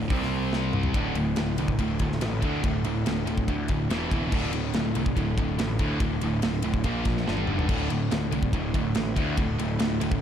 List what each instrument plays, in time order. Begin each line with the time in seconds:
0.10 picked electric bass C2, distorted electric guitar C3 G3, kick, open hi-hat
0.14 distorted electric guitar C4
0.22 snare
0.53 snare
0.73 mid tom
0.83 floor tom
0.94 picked electric bass D1, distorted electric guitar D2 A2 D3, kick, ride
1.15 picked electric bass D1, distorted electric guitar D2 A2, ride
1.36 picked electric bass D1, distorted electric guitar D2 A2, snare, ride
1.58 picked electric bass C2, distorted electric guitar D2 A2, ride
1.68 kick
1.79 picked electric bass D1, distorted electric guitar D2 A2, overdriven electric guitar D3, kick, ride
1.99 picked electric bass D1, distorted electric guitar D2 A2, kick, ride
2.12 snare
2.21 picked electric bass A1, distorted electric guitar D2 A2, snare, ride
2.41 distorted electric guitar D2 A2 D3, picked electric bass D2, kick, ride
2.63 picked electric bass D1, distorted electric guitar D2 A2, overdriven electric guitar D3, kick, ride
2.85 picked electric bass D1, distorted electric guitar D2 A2, ride
3.06 picked electric bass D1, distorted electric guitar D2 A2, snare, ride
3.26 picked electric bass D1, distorted electric guitar D2 A2, ride
3.37 kick
3.48 distorted electric guitar D2 A2, picked electric bass D2, overdriven electric guitar D3, kick, ride
3.68 picked electric bass D1, distorted electric guitar D2 A2, kick, ride
3.89 picked electric bass E1, distorted electric guitar E2 B2 E3, snare, ride
4.11 picked electric bass D1, distorted electric guitar E2 B2 E3, kick, ride
4.32 picked electric bass D1, distorted electric guitar D2 A2 D3, kick, crash
4.53 picked electric bass D1, distorted electric guitar D2 A2, ride
4.74 picked electric bass D1, distorted electric guitar D2 A2, snare, ride
4.95 picked electric bass C2, distorted electric guitar D2 A2, ride
5.06 kick
5.16 picked electric bass D1, distorted electric guitar D2 A2, overdriven electric guitar D3, kick, ride
5.38 picked electric bass D1, distorted electric guitar D2 A2, kick, ride
5.58 picked electric bass A1, distorted electric guitar D2 A2, snare, ride
5.79 distorted electric guitar D2 A2 D3, picked electric bass D2, kick, ride
6.00 picked electric bass D1, distorted electric guitar D2 A2, overdriven electric guitar D3, kick, ride
6.21 picked electric bass D1, distorted electric guitar D2 A2, ride
6.42 picked electric bass D1, distorted electric guitar D2 A2, snare, ride
6.62 picked electric bass D1, distorted electric guitar D2 A2, ride
6.74 kick
6.84 picked electric bass A#1, distorted electric guitar A#2 F3 A#3, kick, ride
7.05 picked electric bass A#1, distorted electric guitar A#2 F3, kick, snare, ride
7.17 snare
7.27 picked electric bass G1, distorted electric guitar G2 D3 G3, snare
7.37 high tom
7.47 picked electric bass F1, distorted electric guitar G2 D3 G3, mid tom
7.59 floor tom
7.68 picked electric bass D1, distorted electric guitar D2 A2 D3, kick, crash
7.90 picked electric bass D1, distorted electric guitar D2 A2, ride
8.11 picked electric bass D1, distorted electric guitar D2 A2, snare, ride
8.31 picked electric bass C2, distorted electric guitar D2 A2, ride
8.43 kick
8.53 picked electric bass D1, distorted electric guitar D2 A2, overdriven electric guitar D3, kick, ride
8.74 picked electric bass D1, distorted electric guitar D2 A2, kick, ride
8.95 picked electric bass A1, distorted electric guitar D2 A2, snare, ride
9.16 distorted electric guitar D2 A2 D3, picked electric bass D2, kick, ride
9.37 picked electric bass D1, distorted electric guitar D2 A2, overdriven electric guitar D3, kick, ride
9.59 picked electric bass D1, distorted electric guitar D2 A2, ride
9.79 picked electric bass D1, distorted electric guitar D2 A2, snare, ride
10.01 picked electric bass D1, distorted electric guitar D2 A2, ride
10.12 kick